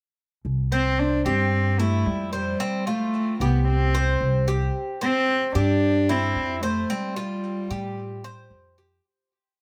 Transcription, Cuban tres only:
0.72 1.24 C5 medium
1.26 1.78 G4 medium
1.79 2.31 E4 medium
2.33 2.59 C5 medium
2.60 2.86 C4 medium
2.87 3.39 F4 medium
3.41 3.93 G4 medium
3.95 4.46 C5 medium
4.48 5.00 G4 medium
5.01 5.54 C5 medium
5.55 6.07 G4 medium
6.09 6.61 E4 medium
6.63 6.89 C5 medium
6.90 7.16 C4 medium
7.16 7.69 F4 medium
7.71 8.23 G4 medium
8.24 8.76 C5 medium
8.78 9.04 G4 medium

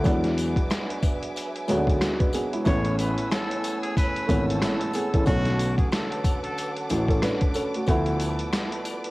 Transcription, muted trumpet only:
2.66 2.96 C#5 medium
2.99 3.28 B4 medium
3.31 3.80 A4 medium
3.82 3.95 G#4 medium
3.97 4.45 B4 loud
4.48 5.23 A4 medium
5.26 5.75 F#4 loud
5.78 5.91 G#4 medium
5.92 6.40 A4 medium
6.43 6.73 A4 medium

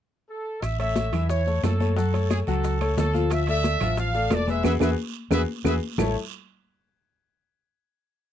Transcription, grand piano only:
0.79 1.07 A3 medium
0.79 1.07 A4 medium
0.79 1.07 C#5 medium
1.12 1.40 E3 medium
1.12 1.40 E4 medium
1.12 1.41 E5 medium
1.47 1.74 A3 medium
1.47 1.74 A4 medium
1.47 1.75 C#5 medium
1.80 1.94 A3 medium
1.80 1.94 A4 medium
1.80 1.94 C#5 medium
1.97 2.11 F#3 medium
1.97 2.11 F#4 medium
1.97 2.11 F#5 medium
2.13 2.41 A3 medium
2.13 2.41 A4 medium
2.13 2.41 C#5 medium
2.48 2.75 F#3 medium
2.48 2.75 F#4 medium
2.48 2.75 F#5 medium
2.81 3.08 A3 medium
2.81 3.08 A4 medium
2.81 3.09 C#5 medium
3.14 3.41 F3 medium
3.14 3.41 F4 medium
3.14 3.42 F5 medium
3.48 3.75 A3 medium
3.48 3.75 A4 medium
3.48 3.76 D5 medium
3.81 4.09 F3 medium
3.81 4.09 F4 medium
3.81 4.09 F5 medium
4.14 4.42 A3 medium
4.14 4.42 A4 medium
4.14 4.42 D5 medium
4.47 4.61 G#3 medium
4.47 4.62 G#4 medium
4.47 4.62 B4 medium
4.63 4.75 F#4 medium
4.63 4.75 G#4 medium
4.63 4.75 B4 medium
4.81 4.92 F#4 medium
4.81 4.92 G#4 medium
4.81 4.92 B4 medium
5.31 5.42 F#4 medium
5.31 5.42 G#4 medium
5.31 5.42 B4 medium
5.65 5.76 F#4 medium
5.65 5.76 G#4 medium
5.65 5.76 B4 medium
5.98 6.14 A3 medium
5.98 6.14 E4 medium
5.98 6.14 A4 medium
5.98 6.14 C#5 medium
5.98 6.14 E5 medium
5.98 6.14 A5 medium

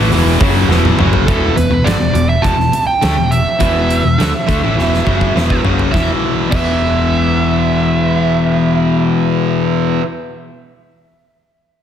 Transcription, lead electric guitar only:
1.27 1.57 A4 medium
1.57 1.87 B4 medium
1.84 2.29 D5 loud
2.29 2.44 E5 medium
2.42 2.83 A5 medium
2.87 3.32 G5 medium
3.31 5.60 E5 medium
5.92 6.09 E5 medium
6.51 9.03 E5 medium

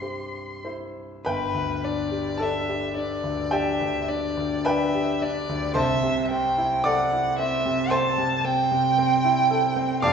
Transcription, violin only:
0.00 0.66 C6 medium
1.27 1.86 B4 medium
1.84 2.43 D5 medium
2.41 2.96 E5 medium
2.97 3.53 D5 medium
3.51 4.09 E5 medium
4.08 4.66 D5 medium
4.64 5.23 E5 medium
5.22 5.76 D5 medium
5.76 6.29 E5 medium
6.30 6.85 G5 medium
6.84 7.38 F#5 medium
7.38 7.93 E5 medium
7.91 8.45 A5 medium
8.44 10.02 G5 medium
10.02 10.13 F5 medium

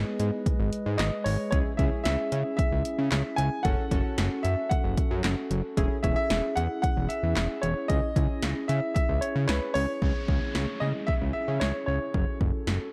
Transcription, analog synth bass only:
0.20 0.31 G#2 loud
0.60 0.71 G#1 medium
0.86 0.97 G#2 loud
0.99 1.11 G#1 loud
1.26 1.37 G#1 loud
1.52 1.64 C#2 loud
1.79 1.90 C#2 loud
2.06 2.17 C#2 loud
2.32 2.43 C#3 loud
2.72 2.83 C#2 medium
2.98 3.10 C#3 loud
3.12 3.23 C#2 loud
3.38 3.50 C#2 loud
3.65 3.76 F#1 loud
3.91 4.03 F#1 loud
4.18 4.29 F#1 loud
4.45 4.56 F#2 loud
4.84 4.96 F#1 loud
5.11 5.22 F#2 loud
5.24 5.35 F#1 loud
5.51 5.62 F#1 loud
5.77 5.89 E1 loud
6.04 6.15 E1 loud
6.30 6.42 E1 loud
6.57 6.68 E2 loud
6.97 7.08 E1 loud
7.23 7.34 E2 loud
7.36 7.48 E1 loud
7.63 7.74 E1 loud
7.90 8.01 C#2 loud
8.16 8.27 C#2 loud
8.43 8.54 C#2 loud
8.69 8.81 C#3 loud
9.09 9.20 C#2 medium
9.36 9.47 C#3 loud
9.49 9.60 C#2 loud
9.75 9.87 C#2 loud
10.02 10.13 C#2 loud
10.28 10.40 C#2 loud
10.55 10.66 C#2 loud
10.82 10.93 C#3 medium
11.21 11.33 C#2 medium
11.48 11.59 C#3 medium
11.61 11.73 C#2 loud
11.88 11.99 C#2 loud
12.14 12.26 F#1 loud
12.41 12.52 F#1 medium
12.67 12.79 F#1 loud

